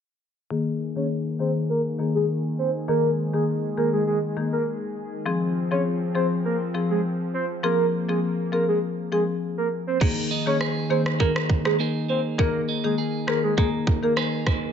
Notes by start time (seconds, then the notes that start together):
0.50 D#3 A#3 G#4
0.96 D#3 A#3 G#4 C#5
1.40 D#3 A#3 G#4 C5
1.70 A#4
1.99 D#3 A#3 G#4
2.15 G#4
2.59 C5
2.88 D#3 G#3 A#3 G#4 A#4
3.33 D#3 A#3 G#4
3.77 D#3 A#3 G#4 A#4
3.93 G#4
4.07 G#4
4.37 D#3 A#3 G#4
4.52 A#4
5.26 F3 C4 G#4
5.71 F3 C4 G#4 C#5
6.15 F3 C4 G#4 C5
6.45 A#4
6.74 F3 C4 G#4
6.90 G#4
7.34 C5
7.63 F3 A#3 C4 G#4 A#4
8.09 F3 C4 G#4
8.52 F3 C4 G#4 A#4
8.68 G#4
9.12 F3 C4 G#4
9.58 A#4
9.87 C5
10.01 D#3 A#3 G#4, kick, crash
10.31 D#4
10.46 D#3 A#3 G#4 C#5
10.61 G#4, cross-stick
10.90 D#3 A#3 G#4 C5
11.06 cross-stick
11.20 D#3 A#3 G#4 A#4, kick
11.36 cross-stick
11.50 kick
11.65 D#3 A#3 G#4, cross-stick
11.80 A#3 D#4 G#4
12.09 A#3 C5
12.38 D#3 A#3 G#4 A#4, kick
12.69 D#4
12.84 D#3 A#3 G#4
12.98 G#4
13.28 D#3 A#3 G#4 A#4, cross-stick
13.44 G#4
13.57 D#3 A#3 G#4, kick
13.87 kick
14.03 D#3 A#3 G#4 A#4
14.17 A#3 D#4 G#4, cross-stick
14.47 A#3, kick, cross-stick